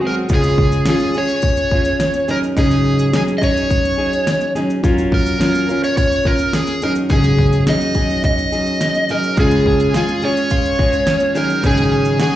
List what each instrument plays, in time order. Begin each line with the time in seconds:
Already playing: clean electric guitar D#3 C4
0.01 steel-string acoustic guitar F#3 C4 F#4 G#4, clean electric guitar G#3
0.07 electric slide guitar A#4
0.29 steel-string acoustic guitar C#3 G#3 C#4 F4 G#4, kick, shaker
0.34 electric slide guitar G#4
0.43 shaker
0.58 kick
0.72 shaker
0.86 steel-string acoustic guitar G#3 C#4 F4 G#4, snare, shaker
0.90 electric slide guitar G#4
1.00 shaker
1.14 steel-string acoustic guitar C#4 F4 G#4, electric slide guitar C#5, shaker
1.29 shaker
1.42 kick, shaker
1.57 shaker
1.71 steel-string acoustic guitar C#4 F4 G#4, kick
1.85 shaker
2.00 snare, shaker
2.14 shaker
2.28 steel-string acoustic guitar F#3 C#4 D#4 G#4, electric slide guitar A#4, snare, shaker
2.43 shaker
2.57 steel-string acoustic guitar G#2 C#3 F#3 C#4 D#4 G#4, electric slide guitar G#4, kick, shaker
2.71 shaker
2.99 shaker
3.13 steel-string acoustic guitar F#3 C#4 D#4 G#4, electric slide guitar G#4, snare, shaker
3.28 shaker
3.38 steel-string acoustic guitar D#4 G#4, electric slide guitar D#5, kick
3.43 steel-string acoustic guitar F#3 C#4, electric slide guitar C#5, shaker
3.57 shaker
3.70 kick, shaker
3.85 shaker
3.98 steel-string acoustic guitar F#3 C#4 D#4 G#4
4.13 shaker
4.27 snare, shaker
4.41 shaker
4.55 steel-string acoustic guitar F#3 C#4 D#4 G#4, snare, shaker
4.70 shaker
4.83 steel-string acoustic guitar F#3 C#4 F4 A#4, kick, shaker
4.98 shaker
5.12 electric slide guitar A#4, kick
5.26 shaker
5.39 steel-string acoustic guitar F#3 C#4 F4 A#4, snare, shaker
5.43 electric slide guitar A#4
5.55 shaker
5.69 steel-string acoustic guitar C#4 F4 A#4, shaker
5.84 electric slide guitar C#5, shaker
5.97 electric slide guitar C#5, kick, shaker
6.12 shaker
6.25 steel-string acoustic guitar C#4 F4 A#4, electric slide guitar A#4, kick
6.39 shaker
6.53 electric slide guitar G#4, snare, shaker
6.67 shaker
6.82 steel-string acoustic guitar F#3 C#4 D#4 G#4, electric slide guitar A#4, snare, shaker
6.95 shaker
7.09 steel-string acoustic guitar G#2 C#3 F#3 C#4 D#4 G#4, electric slide guitar G#4, kick, shaker
7.24 shaker
7.39 kick
7.52 shaker
7.67 steel-string acoustic guitar F#3 C#4 D#4 G#4, electric slide guitar D#5, snare, shaker
7.81 shaker
7.95 steel-string acoustic guitar F#3 C#4 D#4 G#4, kick, shaker
8.10 shaker
8.23 electric slide guitar D#5, kick, shaker
8.38 shaker
8.52 steel-string acoustic guitar F#3 C#4 D#4 G#4, shaker
8.66 shaker
8.81 snare, shaker
8.95 shaker
9.09 steel-string acoustic guitar F#3 C#4 D#4 G#4, electric slide guitar A#4, snare, shaker
9.23 shaker
9.37 steel-string acoustic guitar C#3 G#3 C#4 F4 G#4, clean electric guitar G#3, electric slide guitar G#4, kick, shaker
9.51 shaker
9.66 clean electric guitar C#4, kick
9.80 shaker
9.94 steel-string acoustic guitar G#3 C#4 F4 G#4, clean electric guitar F4, electric slide guitar G#4, snare, shaker
10.08 shaker
10.22 clean electric guitar C#4, steel-string acoustic guitar C#4 F4 G#4, electric slide guitar C#5, shaker
10.37 shaker
10.50 clean electric guitar F4, kick, shaker
10.66 shaker
10.79 clean electric guitar G#3, steel-string acoustic guitar C#4 F4 G#4, kick
10.93 shaker
11.07 clean electric guitar C#4, snare, shaker
11.20 shaker
11.35 clean electric guitar D#3, steel-string acoustic guitar F#3 C#4 D#4 G#4, electric slide guitar A#4, snare, shaker
11.50 shaker
11.63 steel-string acoustic guitar G#2 C#3 F#3 C#4 D#4 G#4, clean electric guitar D#3, electric slide guitar G#4, kick, shaker
11.77 shaker
11.92 clean electric guitar C#4
12.05 shaker
12.19 steel-string acoustic guitar F#3 C#4 D#4 G#4, clean electric guitar F#4, electric slide guitar G#4, snare, shaker